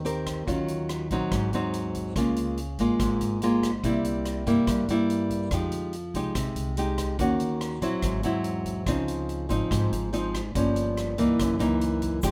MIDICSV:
0, 0, Header, 1, 4, 480
1, 0, Start_track
1, 0, Tempo, 419580
1, 545, Time_signature, 4, 2, 24, 8
1, 14083, End_track
2, 0, Start_track
2, 0, Title_t, "Nylon-string guitar"
2, 0, Program_c, 0, 24
2, 0, Note_on_c, 0, 51, 49
2, 54, Note_on_c, 0, 60, 49
2, 61, Note_on_c, 0, 67, 46
2, 67, Note_on_c, 0, 70, 57
2, 503, Note_off_c, 0, 60, 0
2, 503, Note_off_c, 0, 67, 0
2, 503, Note_off_c, 0, 70, 0
2, 521, Note_off_c, 0, 51, 0
2, 535, Note_on_c, 0, 51, 49
2, 542, Note_on_c, 0, 54, 47
2, 548, Note_on_c, 0, 61, 49
2, 548, Note_on_c, 0, 65, 50
2, 1226, Note_off_c, 0, 54, 0
2, 1227, Note_off_c, 0, 65, 0
2, 1228, Note_off_c, 0, 61, 0
2, 1279, Note_on_c, 0, 60, 55
2, 1282, Note_on_c, 0, 54, 60
2, 1290, Note_on_c, 0, 63, 64
2, 1477, Note_off_c, 0, 51, 0
2, 1520, Note_on_c, 0, 44, 52
2, 1714, Note_off_c, 0, 60, 0
2, 1716, Note_off_c, 0, 54, 0
2, 1718, Note_off_c, 0, 63, 0
2, 1761, Note_on_c, 0, 54, 53
2, 1768, Note_on_c, 0, 60, 58
2, 1773, Note_on_c, 0, 63, 61
2, 2435, Note_off_c, 0, 54, 0
2, 2439, Note_off_c, 0, 60, 0
2, 2440, Note_off_c, 0, 63, 0
2, 2449, Note_off_c, 0, 44, 0
2, 2481, Note_on_c, 0, 49, 46
2, 2486, Note_on_c, 0, 56, 44
2, 2486, Note_on_c, 0, 58, 44
2, 2492, Note_on_c, 0, 65, 53
2, 2953, Note_off_c, 0, 56, 0
2, 2954, Note_off_c, 0, 58, 0
2, 2956, Note_off_c, 0, 65, 0
2, 3201, Note_on_c, 0, 56, 61
2, 3203, Note_on_c, 0, 58, 53
2, 3210, Note_on_c, 0, 65, 66
2, 3410, Note_off_c, 0, 49, 0
2, 3437, Note_on_c, 0, 44, 50
2, 3876, Note_off_c, 0, 56, 0
2, 3876, Note_off_c, 0, 58, 0
2, 3878, Note_off_c, 0, 65, 0
2, 3927, Note_on_c, 0, 56, 54
2, 3928, Note_on_c, 0, 58, 56
2, 3932, Note_on_c, 0, 65, 62
2, 4226, Note_off_c, 0, 56, 0
2, 4226, Note_off_c, 0, 58, 0
2, 4229, Note_off_c, 0, 65, 0
2, 4368, Note_off_c, 0, 44, 0
2, 4397, Note_on_c, 0, 48, 49
2, 4399, Note_on_c, 0, 55, 51
2, 4403, Note_on_c, 0, 58, 48
2, 4406, Note_on_c, 0, 64, 54
2, 5075, Note_off_c, 0, 55, 0
2, 5075, Note_off_c, 0, 58, 0
2, 5075, Note_off_c, 0, 64, 0
2, 5110, Note_on_c, 0, 55, 61
2, 5117, Note_on_c, 0, 58, 66
2, 5120, Note_on_c, 0, 64, 61
2, 5330, Note_off_c, 0, 48, 0
2, 5358, Note_on_c, 0, 43, 53
2, 5550, Note_off_c, 0, 55, 0
2, 5554, Note_off_c, 0, 58, 0
2, 5554, Note_off_c, 0, 64, 0
2, 5608, Note_on_c, 0, 55, 58
2, 5610, Note_on_c, 0, 58, 61
2, 5614, Note_on_c, 0, 64, 61
2, 6280, Note_off_c, 0, 55, 0
2, 6280, Note_off_c, 0, 58, 0
2, 6282, Note_off_c, 0, 64, 0
2, 6288, Note_off_c, 0, 43, 0
2, 6318, Note_on_c, 0, 53, 49
2, 6324, Note_on_c, 0, 56, 43
2, 6329, Note_on_c, 0, 63, 45
2, 6335, Note_on_c, 0, 67, 51
2, 6794, Note_off_c, 0, 56, 0
2, 6794, Note_off_c, 0, 63, 0
2, 6795, Note_off_c, 0, 67, 0
2, 7037, Note_on_c, 0, 56, 56
2, 7047, Note_on_c, 0, 63, 57
2, 7051, Note_on_c, 0, 67, 59
2, 7249, Note_off_c, 0, 53, 0
2, 7277, Note_on_c, 0, 48, 48
2, 7713, Note_off_c, 0, 56, 0
2, 7719, Note_off_c, 0, 63, 0
2, 7719, Note_off_c, 0, 67, 0
2, 7751, Note_on_c, 0, 56, 55
2, 7765, Note_on_c, 0, 63, 54
2, 7768, Note_on_c, 0, 67, 60
2, 8191, Note_off_c, 0, 56, 0
2, 8197, Note_off_c, 0, 67, 0
2, 8198, Note_off_c, 0, 63, 0
2, 8208, Note_off_c, 0, 48, 0
2, 8229, Note_on_c, 0, 51, 44
2, 8233, Note_on_c, 0, 58, 45
2, 8242, Note_on_c, 0, 61, 52
2, 8247, Note_on_c, 0, 66, 50
2, 8913, Note_off_c, 0, 58, 0
2, 8915, Note_off_c, 0, 61, 0
2, 8915, Note_off_c, 0, 66, 0
2, 8941, Note_off_c, 0, 51, 0
2, 8945, Note_on_c, 0, 54, 60
2, 8953, Note_on_c, 0, 60, 58
2, 8960, Note_on_c, 0, 64, 65
2, 9194, Note_on_c, 0, 44, 49
2, 9387, Note_off_c, 0, 54, 0
2, 9391, Note_off_c, 0, 60, 0
2, 9395, Note_off_c, 0, 64, 0
2, 9427, Note_on_c, 0, 54, 55
2, 9432, Note_on_c, 0, 60, 57
2, 9442, Note_on_c, 0, 64, 67
2, 10109, Note_off_c, 0, 54, 0
2, 10110, Note_off_c, 0, 60, 0
2, 10116, Note_off_c, 0, 64, 0
2, 10126, Note_off_c, 0, 44, 0
2, 10145, Note_on_c, 0, 49, 48
2, 10154, Note_on_c, 0, 53, 49
2, 10156, Note_on_c, 0, 60, 51
2, 10164, Note_on_c, 0, 63, 54
2, 10830, Note_off_c, 0, 53, 0
2, 10833, Note_off_c, 0, 60, 0
2, 10837, Note_off_c, 0, 63, 0
2, 10857, Note_on_c, 0, 53, 62
2, 10867, Note_on_c, 0, 60, 58
2, 10876, Note_on_c, 0, 63, 63
2, 11083, Note_off_c, 0, 49, 0
2, 11103, Note_on_c, 0, 44, 52
2, 11544, Note_off_c, 0, 53, 0
2, 11549, Note_off_c, 0, 60, 0
2, 11553, Note_off_c, 0, 63, 0
2, 11585, Note_on_c, 0, 53, 54
2, 11591, Note_on_c, 0, 60, 56
2, 11596, Note_on_c, 0, 63, 55
2, 11895, Note_off_c, 0, 53, 0
2, 11898, Note_off_c, 0, 60, 0
2, 11898, Note_off_c, 0, 63, 0
2, 12041, Note_off_c, 0, 44, 0
2, 12071, Note_on_c, 0, 43, 50
2, 12080, Note_on_c, 0, 53, 49
2, 12081, Note_on_c, 0, 58, 44
2, 12082, Note_on_c, 0, 61, 56
2, 12753, Note_off_c, 0, 58, 0
2, 12754, Note_off_c, 0, 53, 0
2, 12756, Note_off_c, 0, 61, 0
2, 12791, Note_on_c, 0, 52, 61
2, 12798, Note_on_c, 0, 58, 59
2, 12799, Note_on_c, 0, 63, 65
2, 13006, Note_off_c, 0, 43, 0
2, 13046, Note_on_c, 0, 42, 51
2, 13231, Note_off_c, 0, 52, 0
2, 13233, Note_off_c, 0, 63, 0
2, 13234, Note_off_c, 0, 58, 0
2, 13263, Note_on_c, 0, 52, 57
2, 13271, Note_on_c, 0, 58, 54
2, 13273, Note_on_c, 0, 63, 63
2, 13947, Note_off_c, 0, 52, 0
2, 13952, Note_off_c, 0, 58, 0
2, 13952, Note_off_c, 0, 63, 0
2, 13973, Note_off_c, 0, 42, 0
2, 13995, Note_on_c, 0, 56, 49
2, 14001, Note_on_c, 0, 53, 52
2, 14005, Note_on_c, 0, 63, 45
2, 14008, Note_on_c, 0, 67, 55
2, 14083, Note_off_c, 0, 53, 0
2, 14083, Note_off_c, 0, 56, 0
2, 14083, Note_off_c, 0, 63, 0
2, 14083, Note_off_c, 0, 67, 0
2, 14083, End_track
3, 0, Start_track
3, 0, Title_t, "Upright bass"
3, 0, Program_c, 1, 32
3, 0, Note_on_c, 1, 39, 71
3, 498, Note_off_c, 1, 39, 0
3, 543, Note_on_c, 1, 39, 86
3, 1219, Note_off_c, 1, 39, 0
3, 1266, Note_on_c, 1, 34, 83
3, 1377, Note_off_c, 1, 34, 0
3, 1506, Note_on_c, 1, 32, 83
3, 1729, Note_off_c, 1, 32, 0
3, 1753, Note_on_c, 1, 39, 69
3, 2424, Note_off_c, 1, 39, 0
3, 2468, Note_on_c, 1, 37, 86
3, 3142, Note_off_c, 1, 37, 0
3, 3190, Note_on_c, 1, 32, 76
3, 3300, Note_off_c, 1, 32, 0
3, 3427, Note_on_c, 1, 32, 86
3, 3650, Note_off_c, 1, 32, 0
3, 3672, Note_on_c, 1, 32, 72
3, 4344, Note_off_c, 1, 32, 0
3, 4390, Note_on_c, 1, 36, 82
3, 5063, Note_off_c, 1, 36, 0
3, 5107, Note_on_c, 1, 43, 72
3, 5219, Note_off_c, 1, 43, 0
3, 5344, Note_on_c, 1, 43, 91
3, 5569, Note_off_c, 1, 43, 0
3, 5585, Note_on_c, 1, 43, 73
3, 6260, Note_off_c, 1, 43, 0
3, 6309, Note_on_c, 1, 41, 81
3, 6982, Note_off_c, 1, 41, 0
3, 7026, Note_on_c, 1, 36, 75
3, 7138, Note_off_c, 1, 36, 0
3, 7270, Note_on_c, 1, 36, 82
3, 7492, Note_off_c, 1, 36, 0
3, 7497, Note_on_c, 1, 36, 74
3, 8176, Note_off_c, 1, 36, 0
3, 8229, Note_on_c, 1, 39, 85
3, 8902, Note_off_c, 1, 39, 0
3, 8940, Note_on_c, 1, 34, 86
3, 9054, Note_off_c, 1, 34, 0
3, 9184, Note_on_c, 1, 32, 86
3, 9408, Note_off_c, 1, 32, 0
3, 9429, Note_on_c, 1, 40, 76
3, 10102, Note_off_c, 1, 40, 0
3, 10140, Note_on_c, 1, 37, 91
3, 10817, Note_off_c, 1, 37, 0
3, 10868, Note_on_c, 1, 32, 79
3, 10979, Note_off_c, 1, 32, 0
3, 11111, Note_on_c, 1, 32, 91
3, 11332, Note_off_c, 1, 32, 0
3, 11347, Note_on_c, 1, 32, 76
3, 12021, Note_off_c, 1, 32, 0
3, 12079, Note_on_c, 1, 31, 86
3, 12747, Note_off_c, 1, 31, 0
3, 12793, Note_on_c, 1, 37, 72
3, 12902, Note_off_c, 1, 37, 0
3, 13033, Note_on_c, 1, 30, 87
3, 13254, Note_off_c, 1, 30, 0
3, 13283, Note_on_c, 1, 37, 68
3, 13950, Note_off_c, 1, 37, 0
3, 14000, Note_on_c, 1, 29, 89
3, 14083, Note_off_c, 1, 29, 0
3, 14083, End_track
4, 0, Start_track
4, 0, Title_t, "Drums"
4, 65, Note_on_c, 9, 42, 39
4, 179, Note_off_c, 9, 42, 0
4, 303, Note_on_c, 9, 37, 54
4, 303, Note_on_c, 9, 42, 42
4, 305, Note_on_c, 9, 36, 22
4, 418, Note_off_c, 9, 37, 0
4, 418, Note_off_c, 9, 42, 0
4, 419, Note_off_c, 9, 36, 0
4, 545, Note_on_c, 9, 36, 50
4, 549, Note_on_c, 9, 42, 47
4, 659, Note_off_c, 9, 36, 0
4, 664, Note_off_c, 9, 42, 0
4, 781, Note_on_c, 9, 42, 36
4, 895, Note_off_c, 9, 42, 0
4, 1021, Note_on_c, 9, 37, 53
4, 1021, Note_on_c, 9, 42, 36
4, 1135, Note_off_c, 9, 37, 0
4, 1135, Note_off_c, 9, 42, 0
4, 1265, Note_on_c, 9, 36, 23
4, 1265, Note_on_c, 9, 42, 35
4, 1379, Note_off_c, 9, 36, 0
4, 1380, Note_off_c, 9, 42, 0
4, 1505, Note_on_c, 9, 37, 55
4, 1505, Note_on_c, 9, 42, 53
4, 1506, Note_on_c, 9, 36, 57
4, 1620, Note_off_c, 9, 36, 0
4, 1620, Note_off_c, 9, 37, 0
4, 1620, Note_off_c, 9, 42, 0
4, 1748, Note_on_c, 9, 42, 39
4, 1863, Note_off_c, 9, 42, 0
4, 1985, Note_on_c, 9, 42, 36
4, 2099, Note_off_c, 9, 42, 0
4, 2227, Note_on_c, 9, 36, 20
4, 2227, Note_on_c, 9, 42, 36
4, 2341, Note_off_c, 9, 36, 0
4, 2341, Note_off_c, 9, 42, 0
4, 2468, Note_on_c, 9, 36, 54
4, 2470, Note_on_c, 9, 37, 48
4, 2470, Note_on_c, 9, 42, 47
4, 2583, Note_off_c, 9, 36, 0
4, 2585, Note_off_c, 9, 37, 0
4, 2585, Note_off_c, 9, 42, 0
4, 2705, Note_on_c, 9, 42, 38
4, 2819, Note_off_c, 9, 42, 0
4, 2946, Note_on_c, 9, 42, 40
4, 3060, Note_off_c, 9, 42, 0
4, 3188, Note_on_c, 9, 42, 38
4, 3189, Note_on_c, 9, 36, 21
4, 3302, Note_off_c, 9, 42, 0
4, 3303, Note_off_c, 9, 36, 0
4, 3427, Note_on_c, 9, 37, 53
4, 3427, Note_on_c, 9, 42, 54
4, 3428, Note_on_c, 9, 36, 53
4, 3541, Note_off_c, 9, 37, 0
4, 3541, Note_off_c, 9, 42, 0
4, 3542, Note_off_c, 9, 36, 0
4, 3670, Note_on_c, 9, 42, 45
4, 3784, Note_off_c, 9, 42, 0
4, 3910, Note_on_c, 9, 42, 40
4, 4024, Note_off_c, 9, 42, 0
4, 4149, Note_on_c, 9, 36, 21
4, 4156, Note_on_c, 9, 37, 57
4, 4156, Note_on_c, 9, 42, 40
4, 4264, Note_off_c, 9, 36, 0
4, 4270, Note_off_c, 9, 37, 0
4, 4270, Note_off_c, 9, 42, 0
4, 4388, Note_on_c, 9, 36, 48
4, 4390, Note_on_c, 9, 42, 50
4, 4503, Note_off_c, 9, 36, 0
4, 4505, Note_off_c, 9, 42, 0
4, 4628, Note_on_c, 9, 42, 39
4, 4742, Note_off_c, 9, 42, 0
4, 4866, Note_on_c, 9, 37, 48
4, 4866, Note_on_c, 9, 42, 41
4, 4981, Note_off_c, 9, 37, 0
4, 4981, Note_off_c, 9, 42, 0
4, 5105, Note_on_c, 9, 36, 21
4, 5110, Note_on_c, 9, 42, 35
4, 5220, Note_off_c, 9, 36, 0
4, 5224, Note_off_c, 9, 42, 0
4, 5345, Note_on_c, 9, 37, 53
4, 5345, Note_on_c, 9, 42, 52
4, 5347, Note_on_c, 9, 36, 55
4, 5459, Note_off_c, 9, 37, 0
4, 5459, Note_off_c, 9, 42, 0
4, 5461, Note_off_c, 9, 36, 0
4, 5589, Note_on_c, 9, 42, 37
4, 5704, Note_off_c, 9, 42, 0
4, 5832, Note_on_c, 9, 42, 35
4, 5946, Note_off_c, 9, 42, 0
4, 6066, Note_on_c, 9, 36, 21
4, 6069, Note_on_c, 9, 42, 34
4, 6181, Note_off_c, 9, 36, 0
4, 6183, Note_off_c, 9, 42, 0
4, 6303, Note_on_c, 9, 37, 54
4, 6303, Note_on_c, 9, 42, 49
4, 6306, Note_on_c, 9, 36, 55
4, 6417, Note_off_c, 9, 37, 0
4, 6417, Note_off_c, 9, 42, 0
4, 6420, Note_off_c, 9, 36, 0
4, 6540, Note_on_c, 9, 42, 36
4, 6654, Note_off_c, 9, 42, 0
4, 6782, Note_on_c, 9, 42, 35
4, 6896, Note_off_c, 9, 42, 0
4, 7027, Note_on_c, 9, 36, 20
4, 7030, Note_on_c, 9, 42, 41
4, 7142, Note_off_c, 9, 36, 0
4, 7145, Note_off_c, 9, 42, 0
4, 7265, Note_on_c, 9, 37, 53
4, 7265, Note_on_c, 9, 42, 54
4, 7267, Note_on_c, 9, 36, 51
4, 7380, Note_off_c, 9, 37, 0
4, 7380, Note_off_c, 9, 42, 0
4, 7381, Note_off_c, 9, 36, 0
4, 7504, Note_on_c, 9, 42, 42
4, 7619, Note_off_c, 9, 42, 0
4, 7745, Note_on_c, 9, 42, 43
4, 7859, Note_off_c, 9, 42, 0
4, 7984, Note_on_c, 9, 37, 55
4, 7984, Note_on_c, 9, 42, 43
4, 7985, Note_on_c, 9, 36, 22
4, 8098, Note_off_c, 9, 37, 0
4, 8098, Note_off_c, 9, 42, 0
4, 8100, Note_off_c, 9, 36, 0
4, 8225, Note_on_c, 9, 36, 51
4, 8226, Note_on_c, 9, 42, 52
4, 8339, Note_off_c, 9, 36, 0
4, 8340, Note_off_c, 9, 42, 0
4, 8462, Note_on_c, 9, 42, 37
4, 8576, Note_off_c, 9, 42, 0
4, 8705, Note_on_c, 9, 37, 52
4, 8705, Note_on_c, 9, 42, 39
4, 8820, Note_off_c, 9, 37, 0
4, 8820, Note_off_c, 9, 42, 0
4, 8943, Note_on_c, 9, 36, 22
4, 8946, Note_on_c, 9, 42, 39
4, 9057, Note_off_c, 9, 36, 0
4, 9060, Note_off_c, 9, 42, 0
4, 9178, Note_on_c, 9, 37, 52
4, 9178, Note_on_c, 9, 42, 51
4, 9180, Note_on_c, 9, 36, 54
4, 9292, Note_off_c, 9, 37, 0
4, 9292, Note_off_c, 9, 42, 0
4, 9295, Note_off_c, 9, 36, 0
4, 9418, Note_on_c, 9, 42, 43
4, 9532, Note_off_c, 9, 42, 0
4, 9656, Note_on_c, 9, 42, 42
4, 9771, Note_off_c, 9, 42, 0
4, 9902, Note_on_c, 9, 36, 21
4, 9904, Note_on_c, 9, 42, 37
4, 10016, Note_off_c, 9, 36, 0
4, 10018, Note_off_c, 9, 42, 0
4, 10141, Note_on_c, 9, 36, 56
4, 10141, Note_on_c, 9, 37, 51
4, 10141, Note_on_c, 9, 42, 49
4, 10255, Note_off_c, 9, 36, 0
4, 10256, Note_off_c, 9, 37, 0
4, 10256, Note_off_c, 9, 42, 0
4, 10388, Note_on_c, 9, 42, 39
4, 10503, Note_off_c, 9, 42, 0
4, 10627, Note_on_c, 9, 42, 32
4, 10742, Note_off_c, 9, 42, 0
4, 10866, Note_on_c, 9, 36, 21
4, 10869, Note_on_c, 9, 42, 37
4, 10980, Note_off_c, 9, 36, 0
4, 10984, Note_off_c, 9, 42, 0
4, 11108, Note_on_c, 9, 36, 52
4, 11115, Note_on_c, 9, 37, 57
4, 11115, Note_on_c, 9, 42, 53
4, 11223, Note_off_c, 9, 36, 0
4, 11229, Note_off_c, 9, 37, 0
4, 11229, Note_off_c, 9, 42, 0
4, 11356, Note_on_c, 9, 42, 45
4, 11470, Note_off_c, 9, 42, 0
4, 11594, Note_on_c, 9, 42, 44
4, 11709, Note_off_c, 9, 42, 0
4, 11832, Note_on_c, 9, 36, 22
4, 11835, Note_on_c, 9, 37, 56
4, 11835, Note_on_c, 9, 42, 41
4, 11946, Note_off_c, 9, 36, 0
4, 11949, Note_off_c, 9, 37, 0
4, 11949, Note_off_c, 9, 42, 0
4, 12072, Note_on_c, 9, 42, 54
4, 12073, Note_on_c, 9, 36, 53
4, 12187, Note_off_c, 9, 42, 0
4, 12188, Note_off_c, 9, 36, 0
4, 12309, Note_on_c, 9, 42, 39
4, 12424, Note_off_c, 9, 42, 0
4, 12553, Note_on_c, 9, 37, 49
4, 12553, Note_on_c, 9, 42, 39
4, 12668, Note_off_c, 9, 37, 0
4, 12668, Note_off_c, 9, 42, 0
4, 12791, Note_on_c, 9, 42, 39
4, 12795, Note_on_c, 9, 36, 20
4, 12905, Note_off_c, 9, 42, 0
4, 12909, Note_off_c, 9, 36, 0
4, 13035, Note_on_c, 9, 37, 57
4, 13035, Note_on_c, 9, 42, 56
4, 13036, Note_on_c, 9, 36, 57
4, 13149, Note_off_c, 9, 37, 0
4, 13149, Note_off_c, 9, 42, 0
4, 13150, Note_off_c, 9, 36, 0
4, 13272, Note_on_c, 9, 42, 42
4, 13386, Note_off_c, 9, 42, 0
4, 13513, Note_on_c, 9, 42, 40
4, 13628, Note_off_c, 9, 42, 0
4, 13748, Note_on_c, 9, 42, 38
4, 13752, Note_on_c, 9, 36, 23
4, 13863, Note_off_c, 9, 42, 0
4, 13867, Note_off_c, 9, 36, 0
4, 13985, Note_on_c, 9, 82, 58
4, 13994, Note_on_c, 9, 36, 54
4, 13994, Note_on_c, 9, 37, 51
4, 13994, Note_on_c, 9, 42, 51
4, 14083, Note_off_c, 9, 36, 0
4, 14083, Note_off_c, 9, 37, 0
4, 14083, Note_off_c, 9, 42, 0
4, 14083, Note_off_c, 9, 82, 0
4, 14083, End_track
0, 0, End_of_file